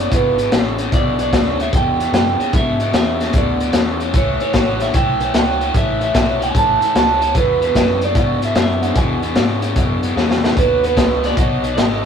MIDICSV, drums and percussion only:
0, 0, Header, 1, 2, 480
1, 0, Start_track
1, 0, Tempo, 401875
1, 1102, Time_signature, 4, 2, 24, 8
1, 14395, End_track
2, 0, Start_track
2, 0, Title_t, "Drums"
2, 139, Note_on_c, 9, 36, 104
2, 139, Note_on_c, 9, 42, 87
2, 258, Note_off_c, 9, 36, 0
2, 258, Note_off_c, 9, 42, 0
2, 458, Note_on_c, 9, 42, 61
2, 578, Note_off_c, 9, 42, 0
2, 618, Note_on_c, 9, 42, 76
2, 624, Note_on_c, 9, 38, 99
2, 738, Note_off_c, 9, 42, 0
2, 744, Note_off_c, 9, 38, 0
2, 936, Note_on_c, 9, 42, 59
2, 1055, Note_off_c, 9, 42, 0
2, 1103, Note_on_c, 9, 36, 103
2, 1104, Note_on_c, 9, 42, 84
2, 1222, Note_off_c, 9, 36, 0
2, 1223, Note_off_c, 9, 42, 0
2, 1419, Note_on_c, 9, 42, 57
2, 1539, Note_off_c, 9, 42, 0
2, 1585, Note_on_c, 9, 36, 63
2, 1586, Note_on_c, 9, 42, 76
2, 1592, Note_on_c, 9, 38, 105
2, 1704, Note_off_c, 9, 36, 0
2, 1705, Note_off_c, 9, 42, 0
2, 1711, Note_off_c, 9, 38, 0
2, 1908, Note_on_c, 9, 42, 59
2, 2027, Note_off_c, 9, 42, 0
2, 2066, Note_on_c, 9, 36, 105
2, 2066, Note_on_c, 9, 42, 81
2, 2185, Note_off_c, 9, 36, 0
2, 2185, Note_off_c, 9, 42, 0
2, 2392, Note_on_c, 9, 42, 58
2, 2511, Note_off_c, 9, 42, 0
2, 2550, Note_on_c, 9, 42, 74
2, 2556, Note_on_c, 9, 38, 95
2, 2669, Note_off_c, 9, 42, 0
2, 2675, Note_off_c, 9, 38, 0
2, 2869, Note_on_c, 9, 42, 54
2, 2989, Note_off_c, 9, 42, 0
2, 3022, Note_on_c, 9, 42, 74
2, 3026, Note_on_c, 9, 36, 118
2, 3141, Note_off_c, 9, 42, 0
2, 3145, Note_off_c, 9, 36, 0
2, 3341, Note_on_c, 9, 42, 58
2, 3461, Note_off_c, 9, 42, 0
2, 3505, Note_on_c, 9, 42, 83
2, 3511, Note_on_c, 9, 38, 93
2, 3625, Note_off_c, 9, 42, 0
2, 3631, Note_off_c, 9, 38, 0
2, 3827, Note_on_c, 9, 42, 61
2, 3833, Note_on_c, 9, 38, 33
2, 3947, Note_off_c, 9, 42, 0
2, 3953, Note_off_c, 9, 38, 0
2, 3978, Note_on_c, 9, 42, 84
2, 3986, Note_on_c, 9, 36, 104
2, 4098, Note_off_c, 9, 42, 0
2, 4105, Note_off_c, 9, 36, 0
2, 4302, Note_on_c, 9, 42, 63
2, 4422, Note_off_c, 9, 42, 0
2, 4453, Note_on_c, 9, 42, 81
2, 4459, Note_on_c, 9, 38, 89
2, 4572, Note_off_c, 9, 42, 0
2, 4578, Note_off_c, 9, 38, 0
2, 4779, Note_on_c, 9, 42, 55
2, 4899, Note_off_c, 9, 42, 0
2, 4939, Note_on_c, 9, 42, 83
2, 4944, Note_on_c, 9, 36, 112
2, 5058, Note_off_c, 9, 42, 0
2, 5063, Note_off_c, 9, 36, 0
2, 5257, Note_on_c, 9, 42, 59
2, 5377, Note_off_c, 9, 42, 0
2, 5414, Note_on_c, 9, 42, 79
2, 5420, Note_on_c, 9, 38, 91
2, 5422, Note_on_c, 9, 36, 77
2, 5534, Note_off_c, 9, 42, 0
2, 5540, Note_off_c, 9, 38, 0
2, 5542, Note_off_c, 9, 36, 0
2, 5734, Note_on_c, 9, 42, 63
2, 5740, Note_on_c, 9, 38, 34
2, 5854, Note_off_c, 9, 42, 0
2, 5860, Note_off_c, 9, 38, 0
2, 5896, Note_on_c, 9, 42, 90
2, 5902, Note_on_c, 9, 36, 99
2, 6016, Note_off_c, 9, 42, 0
2, 6022, Note_off_c, 9, 36, 0
2, 6215, Note_on_c, 9, 42, 62
2, 6334, Note_off_c, 9, 42, 0
2, 6378, Note_on_c, 9, 42, 68
2, 6384, Note_on_c, 9, 38, 104
2, 6498, Note_off_c, 9, 42, 0
2, 6504, Note_off_c, 9, 38, 0
2, 6700, Note_on_c, 9, 42, 50
2, 6819, Note_off_c, 9, 42, 0
2, 6859, Note_on_c, 9, 42, 77
2, 6861, Note_on_c, 9, 36, 103
2, 6979, Note_off_c, 9, 42, 0
2, 6981, Note_off_c, 9, 36, 0
2, 7180, Note_on_c, 9, 42, 55
2, 7299, Note_off_c, 9, 42, 0
2, 7338, Note_on_c, 9, 42, 74
2, 7341, Note_on_c, 9, 36, 74
2, 7344, Note_on_c, 9, 38, 100
2, 7458, Note_off_c, 9, 42, 0
2, 7460, Note_off_c, 9, 36, 0
2, 7464, Note_off_c, 9, 38, 0
2, 7667, Note_on_c, 9, 42, 59
2, 7787, Note_off_c, 9, 42, 0
2, 7820, Note_on_c, 9, 36, 101
2, 7824, Note_on_c, 9, 42, 76
2, 7940, Note_off_c, 9, 36, 0
2, 7943, Note_off_c, 9, 42, 0
2, 8144, Note_on_c, 9, 42, 69
2, 8264, Note_off_c, 9, 42, 0
2, 8304, Note_on_c, 9, 42, 81
2, 8310, Note_on_c, 9, 38, 99
2, 8424, Note_off_c, 9, 42, 0
2, 8430, Note_off_c, 9, 38, 0
2, 8620, Note_on_c, 9, 42, 61
2, 8739, Note_off_c, 9, 42, 0
2, 8778, Note_on_c, 9, 36, 105
2, 8779, Note_on_c, 9, 42, 88
2, 8898, Note_off_c, 9, 36, 0
2, 8898, Note_off_c, 9, 42, 0
2, 9102, Note_on_c, 9, 42, 53
2, 9222, Note_off_c, 9, 42, 0
2, 9258, Note_on_c, 9, 36, 64
2, 9261, Note_on_c, 9, 42, 81
2, 9267, Note_on_c, 9, 38, 104
2, 9377, Note_off_c, 9, 36, 0
2, 9381, Note_off_c, 9, 42, 0
2, 9387, Note_off_c, 9, 38, 0
2, 9573, Note_on_c, 9, 42, 63
2, 9692, Note_off_c, 9, 42, 0
2, 9735, Note_on_c, 9, 42, 81
2, 9737, Note_on_c, 9, 36, 112
2, 9855, Note_off_c, 9, 42, 0
2, 9856, Note_off_c, 9, 36, 0
2, 10058, Note_on_c, 9, 42, 62
2, 10178, Note_off_c, 9, 42, 0
2, 10214, Note_on_c, 9, 42, 81
2, 10220, Note_on_c, 9, 38, 101
2, 10334, Note_off_c, 9, 42, 0
2, 10340, Note_off_c, 9, 38, 0
2, 10541, Note_on_c, 9, 42, 59
2, 10661, Note_off_c, 9, 42, 0
2, 10694, Note_on_c, 9, 42, 84
2, 10698, Note_on_c, 9, 36, 117
2, 10814, Note_off_c, 9, 42, 0
2, 10817, Note_off_c, 9, 36, 0
2, 11018, Note_on_c, 9, 42, 54
2, 11137, Note_off_c, 9, 42, 0
2, 11172, Note_on_c, 9, 42, 74
2, 11178, Note_on_c, 9, 38, 99
2, 11292, Note_off_c, 9, 42, 0
2, 11298, Note_off_c, 9, 38, 0
2, 11490, Note_on_c, 9, 42, 64
2, 11610, Note_off_c, 9, 42, 0
2, 11655, Note_on_c, 9, 42, 76
2, 11658, Note_on_c, 9, 36, 102
2, 11774, Note_off_c, 9, 42, 0
2, 11777, Note_off_c, 9, 36, 0
2, 11978, Note_on_c, 9, 42, 64
2, 12097, Note_off_c, 9, 42, 0
2, 12150, Note_on_c, 9, 38, 63
2, 12269, Note_off_c, 9, 38, 0
2, 12312, Note_on_c, 9, 38, 75
2, 12431, Note_off_c, 9, 38, 0
2, 12473, Note_on_c, 9, 38, 95
2, 12593, Note_off_c, 9, 38, 0
2, 12623, Note_on_c, 9, 36, 106
2, 12627, Note_on_c, 9, 42, 83
2, 12742, Note_off_c, 9, 36, 0
2, 12746, Note_off_c, 9, 42, 0
2, 12943, Note_on_c, 9, 42, 64
2, 13063, Note_off_c, 9, 42, 0
2, 13100, Note_on_c, 9, 36, 71
2, 13102, Note_on_c, 9, 42, 81
2, 13108, Note_on_c, 9, 38, 98
2, 13220, Note_off_c, 9, 36, 0
2, 13222, Note_off_c, 9, 42, 0
2, 13228, Note_off_c, 9, 38, 0
2, 13420, Note_on_c, 9, 42, 72
2, 13426, Note_on_c, 9, 38, 32
2, 13539, Note_off_c, 9, 42, 0
2, 13545, Note_off_c, 9, 38, 0
2, 13581, Note_on_c, 9, 36, 114
2, 13585, Note_on_c, 9, 42, 91
2, 13701, Note_off_c, 9, 36, 0
2, 13705, Note_off_c, 9, 42, 0
2, 13900, Note_on_c, 9, 42, 65
2, 14020, Note_off_c, 9, 42, 0
2, 14064, Note_on_c, 9, 42, 75
2, 14070, Note_on_c, 9, 38, 97
2, 14184, Note_off_c, 9, 42, 0
2, 14190, Note_off_c, 9, 38, 0
2, 14395, End_track
0, 0, End_of_file